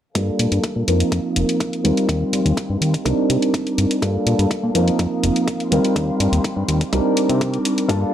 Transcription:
0.15 0.31 G2 medium
0.15 0.83 G3 medium
0.15 0.83 A#3 medium
0.15 0.83 D4 medium
0.15 0.83 F4 medium
0.15 0.87 A4 medium
0.15 0.84 A4 medium
0.15 1.83 F5 medium
0.15 kick loud
0.15 closed hi-hat medium
0.39 0.47 A#2 medium
0.39 closed hi-hat medium
0.52 0.59 G2 medium
0.52 closed hi-hat soft
0.64 kick loud
0.64 closed hi-hat medium
0.76 0.83 A#2 medium
0.87 1.03 F2 medium
0.87 1.80 F3 medium
0.87 1.80 A#3 medium
0.87 1.80 C4 medium
0.87 1.80 D#4 medium
0.87 1.83 A#4 medium
0.87 1.80 A#4 medium
0.87 1.83 D#6 medium
0.87 closed hi-hat medium
1.00 closed hi-hat soft
1.12 1.20 F2 medium
1.12 kick loud
1.12 closed hi-hat medium
1.36 1.44 F1 medium
1.36 closed hi-hat medium
1.49 closed hi-hat soft
1.60 kick loud
1.60 closed hi-hat medium
1.73 closed hi-hat soft
1.84 1.92 D#2 medium
1.84 3.01 G3 medium
1.84 3.01 C4 medium
1.84 3.01 D#4 medium
1.84 3.01 F4 medium
1.84 3.04 G4 medium
1.84 3.01 A#4 medium
1.84 3.04 F5 medium
1.84 3.04 C6 medium
1.84 closed hi-hat medium
1.97 closed hi-hat soft
2.09 2.24 D#2 medium
2.09 kick loud
2.09 closed hi-hat medium
2.33 2.41 G2 medium
2.33 closed hi-hat medium
2.45 2.53 D#2 loud
2.45 closed hi-hat soft
2.57 kick loud
2.57 closed hi-hat medium
2.70 2.77 G2 medium
2.81 2.97 D#2 medium
2.81 closed hi-hat medium
2.94 kick medium
2.94 closed hi-hat soft
3.05 3.13 C2 medium
3.05 3.97 G3 medium
3.05 3.97 C4 medium
3.05 3.98 D4 medium
3.05 3.98 D#4 medium
3.05 4.01 A#4 medium
3.05 3.98 A#4 medium
3.05 4.01 D6 medium
3.05 kick loud
3.05 closed hi-hat medium
3.30 3.37 C3 medium
3.30 closed hi-hat medium
3.42 closed hi-hat soft
3.54 kick loud
3.54 closed hi-hat medium
3.67 closed hi-hat soft
3.78 3.86 G2 medium
3.78 closed hi-hat medium
3.91 closed hi-hat soft
4.02 4.18 G2 medium
4.02 4.70 G3 medium
4.02 4.70 A#3 medium
4.02 4.70 D4 medium
4.02 4.70 F4 medium
4.02 4.74 A4 medium
4.02 4.71 A4 medium
4.02 6.90 F5 medium
4.02 kick loud
4.02 closed hi-hat medium
4.26 4.34 A#2 medium
4.26 closed hi-hat medium
4.39 4.46 G2 loud
4.39 closed hi-hat soft
4.51 kick loud
4.51 closed hi-hat medium
4.63 4.71 A#2 medium
4.74 4.90 F2 medium
4.74 5.67 F3 medium
4.74 5.67 A#3 medium
4.74 5.67 C4 medium
4.74 5.67 D#4 medium
4.74 5.71 A#4 medium
4.74 5.67 A#4 medium
4.74 5.71 D#6 medium
4.74 closed hi-hat medium
4.88 closed hi-hat soft
4.99 5.07 F2 medium
4.99 kick loud
4.99 closed hi-hat medium
5.23 5.31 F1 medium
5.23 closed hi-hat medium
5.36 closed hi-hat soft
5.48 kick loud
5.48 closed hi-hat medium
5.60 closed hi-hat soft
5.71 5.79 D#2 medium
5.71 6.88 G3 medium
5.71 6.88 C4 medium
5.71 6.88 D#4 medium
5.71 6.88 F4 medium
5.71 6.91 G4 medium
5.71 6.88 A#4 medium
5.71 6.91 C6 medium
5.71 closed hi-hat medium
5.84 closed hi-hat soft
5.96 6.11 D#2 medium
5.96 kick loud
5.96 closed hi-hat medium
6.20 6.28 G2 medium
6.20 closed hi-hat medium
6.32 6.40 D#2 loud
6.32 closed hi-hat soft
6.44 kick loud
6.44 closed hi-hat medium
6.57 6.64 G2 medium
6.68 6.84 D#2 medium
6.68 closed hi-hat medium
6.81 kick medium
6.81 closed hi-hat soft
6.92 7.00 C2 medium
6.92 7.85 G3 medium
6.92 7.85 C4 medium
6.92 7.85 D4 medium
6.92 7.85 D#4 medium
6.92 7.89 A#4 medium
6.92 7.85 A#4 medium
6.92 7.88 D6 medium
6.92 kick loud
6.92 closed hi-hat medium
7.17 closed hi-hat medium
7.29 7.58 C3 loud
7.29 closed hi-hat soft
7.41 kick loud
7.41 closed hi-hat medium
7.54 closed hi-hat soft
7.65 closed hi-hat medium
7.78 closed hi-hat soft
7.89 8.05 G2 medium
7.89 8.14 G3 medium
7.89 8.02 A#3 medium
7.89 8.14 A#3 medium
7.89 8.14 D4 medium
7.89 8.02 D4 medium
7.89 8.14 F4 medium
7.89 8.02 F4 medium
7.89 8.14 A4 medium
7.89 8.00 A4 medium
7.89 8.14 F5 medium
7.89 kick loud
7.89 closed hi-hat medium
8.01 8.14 D4 soft
8.01 8.14 F4 soft
8.01 8.14 A4 medium
8.01 tambourine soft

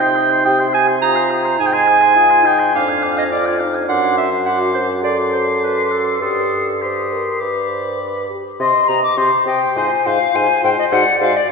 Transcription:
0.00 1.56 C3 medium
0.00 0.47 D#4 medium
0.00 0.44 G5 loud
0.00 0.18 C6 medium
0.00 0.17 G6 medium
0.15 0.33 G5 medium
0.15 0.31 D#6 medium
0.30 0.45 C6 medium
0.30 0.43 G6 medium
0.43 1.02 G4 medium
0.43 0.62 G5 medium
0.43 0.58 G5 loud
0.43 0.61 D#6 medium
0.59 0.75 C6 medium
0.59 0.74 G6 medium
0.73 0.89 G5 medium
0.73 0.87 G#5 loud
0.73 0.89 D#6 medium
0.88 1.00 C6 medium
0.88 1.01 G6 medium
1.01 1.61 F4 medium
1.01 1.16 G5 medium
1.01 1.39 A#5 loud
1.01 1.17 D#6 medium
1.15 1.31 C6 medium
1.15 1.32 G6 medium
1.30 1.46 G5 medium
1.30 1.47 D#6 medium
1.44 1.58 C6 medium
1.44 1.59 G6 medium
1.59 2.78 G#2 medium
1.59 2.18 D#4 medium
1.59 1.74 G#5 medium
1.59 1.68 G#5 loud
1.59 1.75 D#6 medium
1.67 1.75 G5 medium
1.73 2.48 G#5 loud
1.73 1.88 C6 medium
1.73 1.89 G#6 medium
1.86 2.03 G#5 medium
1.86 2.03 D#6 medium
2.01 2.15 C6 medium
2.01 2.15 G#6 medium
2.16 2.47 F4 medium
2.16 2.32 G#5 medium
2.16 2.32 D#6 medium
2.30 2.47 C6 medium
2.30 2.46 G#6 medium
2.45 2.73 D#4 medium
2.45 2.75 G5 loud
2.45 2.61 G#5 medium
2.45 2.61 D#6 medium
2.59 2.74 C6 medium
2.59 2.74 G#6 medium
2.74 3.89 F2 medium
2.74 3.31 D4 medium
2.74 2.91 F5 medium
2.74 3.18 F5 loud
2.74 2.90 D6 medium
2.88 3.05 G#5 medium
2.88 3.04 F6 medium
3.03 3.19 F5 medium
3.03 3.19 D6 medium
3.17 3.25 D#5 medium
3.17 3.31 G#5 medium
3.17 3.30 F6 medium
3.31 3.59 F4 medium
3.31 3.60 D5 medium
3.31 3.48 F5 medium
3.31 3.47 D6 medium
3.45 3.61 G#5 medium
3.45 3.61 F6 medium
3.60 3.90 D#4 medium
3.60 3.76 F5 medium
3.60 3.76 D6 medium
3.74 3.89 G#5 medium
3.74 3.87 F6 medium
3.88 6.18 F#2 medium
3.88 4.26 D4 medium
3.88 4.16 F#5 loud
3.88 4.43 C6 medium
3.88 4.20 D6 medium
4.17 4.30 E5 medium
4.46 5.04 F#4 medium
4.46 4.59 F#5 medium
4.46 4.88 C6 medium
4.46 5.03 D6 medium
4.74 4.88 C5 medium
5.03 6.20 A4 medium
5.03 5.17 D5 medium
5.03 6.19 C6 medium
5.03 6.23 D6 medium
5.33 5.46 C5 medium
5.63 5.93 B4 medium
5.92 6.21 A4 medium
6.20 7.24 G2 medium
6.20 6.74 G4 medium
6.20 6.83 A4 medium
6.20 6.80 C6 medium
6.20 6.81 D#6 soft
6.81 8.30 G4 medium
6.81 7.13 C5 medium
6.81 7.40 C6 soft
6.81 7.42 D#6 soft
7.11 7.43 A#4 medium
7.40 8.28 G2 medium
7.40 7.71 B4 medium
7.40 8.28 B5 medium
7.40 8.30 D6 soft
7.70 8.02 C5 medium
8.00 8.29 B4 medium
8.30 8.43 G4 soft
8.59 8.73 C3 medium
8.59 8.73 G4 medium
8.59 9.14 D#5 medium
8.59 8.73 D#5 medium
8.59 8.90 C6 medium
8.88 9.02 C3 medium
8.88 9.02 G4 medium
8.88 9.02 D#5 medium
8.88 9.03 A#5 medium
9.03 9.19 D6 medium
9.17 9.31 C3 medium
9.17 9.31 G4 medium
9.17 10.32 C5 medium
9.17 9.31 D#5 medium
9.17 9.46 C6 loud
9.46 9.59 C3 medium
9.46 9.60 G4 medium
9.46 9.60 D#5 medium
9.46 9.79 G5 medium
9.76 9.89 G#2 medium
9.76 9.90 F4 medium
9.76 9.90 C5 medium
9.76 10.08 G#5 loud
10.05 10.19 G#2 medium
10.05 10.19 F4 medium
10.05 10.19 C5 medium
10.05 10.37 F5 loud
10.34 10.48 G#2 medium
10.34 10.47 F4 medium
10.34 10.48 C5 medium
10.34 10.94 C5 medium
10.34 10.64 G#5 loud
10.62 10.77 G#2 medium
10.62 10.76 F4 medium
10.62 10.77 C5 medium
10.62 10.70 G5 loud
10.79 10.85 D#5 loud
10.91 11.05 G#2 medium
10.91 11.06 F#4 medium
10.91 11.05 C5 medium
10.91 11.52 D5 loud
10.91 11.20 F#5 loud
11.21 11.34 G#2 medium
11.21 11.34 F#4 medium
11.21 11.34 C5 medium
11.21 11.38 F5 loud
11.37 11.50 D5 loud

